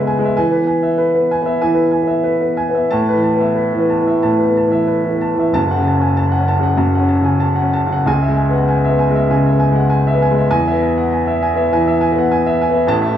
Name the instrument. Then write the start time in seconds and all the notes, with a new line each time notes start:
upright piano
Already playing: C#3 G#3 B3 B4 E5 G#5
0.07 G#5
0.19 G#3
0.25 E5
0.37 E3 G#5
0.51 B4
0.56 B3
0.67 G#5
0.83 E5
0.98 B4
1.14 B3
1.31 G#5
1.42 B3
1.46 E5
1.62 E3 G#5
1.75 B4
1.91 G#5
2.02 B3
2.07 E5
2.24 B4
2.41 B3
2.57 G#5
2.69 B3
2.74 E5
2.91 A2 A5
3.09 B4
3.14 E3
3.23 A5
3.35 B3
3.40 E5
3.55 B4
3.73 E3
3.78 B3
3.90 A5
4.01 E3
4.07 E5
4.23 A2 A5
4.39 B4
4.44 B3
4.57 A5
4.68 E3 E5
4.87 B4
5.05 E3
5.10 B3
5.21 A5
5.35 E3
5.39 E5
5.53 F#1 F#2 A5
5.71 F#5
5.76 C#3
5.88 A5
5.98 C#4
6.02 G#5
6.17 A5
6.32 F#5
6.39 C#4
6.48 A5
6.60 C#3 F#5
6.77 F#2 A5
6.95 F#5
6.99 C#4
7.09 A5
7.21 C#3 G#5
7.40 A5
7.56 F#5
7.62 C#4
7.73 A5
7.86 C#3
7.92 F#5
8.06 C#2 C#3 G#5
8.22 E5
8.28 G#3
8.37 G#5
8.49 B3 F#5
8.68 G#5
8.84 E5
8.89 B3
8.99 G#5
9.11 G#3
9.15 E5
9.30 C#3 G#5
9.46 E5
9.51 B3
9.60 G#5
9.71 G#3
9.75 F#5
9.90 G#5
10.07 E5
10.13 B3
10.22 G#5
10.31 G#3
10.37 E5
10.50 E2 E3 G#5
10.68 E5
10.72 B3
10.83 G#5
10.98 F#5
11.13 G#5
11.27 E5
11.43 G#5
11.55 B3 E5
11.72 E3 G#5
11.87 E5
12.01 G#5
12.12 B3
12.18 F#5
12.32 G#5
12.46 E5
12.61 G#5
12.70 B3 E5
12.87 A1 A2 A5
13.02 E5
13.08 E3